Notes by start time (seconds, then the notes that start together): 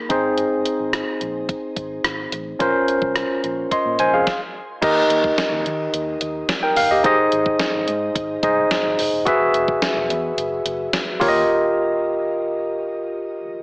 Already playing: A#3 D#4 G#4 A#4
0.09 G#1 C4 D#4 G#4 C5, kick, closed hi-hat
0.38 closed hi-hat
0.66 closed hi-hat
0.80 G#1
0.93 cross-stick, closed hi-hat
1.21 A#1, closed hi-hat
1.49 kick, closed hi-hat
1.76 G#1, kick, closed hi-hat
2.04 G#1, cross-stick, closed hi-hat
2.32 A1, closed hi-hat
2.59 A#1 C#4 F4 A#4 C5, kick, closed hi-hat
2.88 closed hi-hat
3.02 C2, kick
3.16 cross-stick, closed hi-hat
3.44 A#1, closed hi-hat
3.71 D#5 C6, kick, closed hi-hat
3.85 A#2
3.99 A#1 C5 G#5, closed hi-hat
4.13 F2 G#4 F5
4.27 kick, snare
4.82 D#2 D#4 G4 A#4 D#5, kick, closed hi-hat, crash
5.10 D#2, closed hi-hat
5.24 kick
5.38 snare, closed hi-hat
5.52 D#2
5.66 D#3, closed hi-hat
5.94 D#2, closed hi-hat
6.21 D#2, closed hi-hat
6.49 snare, closed hi-hat
6.63 A#4 G5
6.76 G1 F5, open hi-hat
6.91 G4 D#5
7.04 G#1 D#4 G#4 C5 D#5, kick, closed hi-hat
7.32 G#1, closed hi-hat
7.46 kick
7.59 snare, closed hi-hat
7.74 G#1
7.88 G#2, closed hi-hat
8.15 G#1, kick, closed hi-hat
8.43 C2 D#4 G#4 C5 D#5, kick, closed hi-hat
8.71 snare, closed hi-hat
8.85 G#1
8.99 F1, open hi-hat
9.13 D#1
9.25 E1 F#4 G#4 B4 E5, kick, closed hi-hat
9.54 E1, closed hi-hat
9.68 kick
9.82 snare, closed hi-hat, tambourine
9.96 E1
10.10 E2, closed hi-hat
10.37 F#1, closed hi-hat
10.66 F#1, closed hi-hat
10.93 snare, closed hi-hat, tambourine
11.20 D#2 F4 G4 A#4 C#5, kick, open hi-hat
11.28 D#5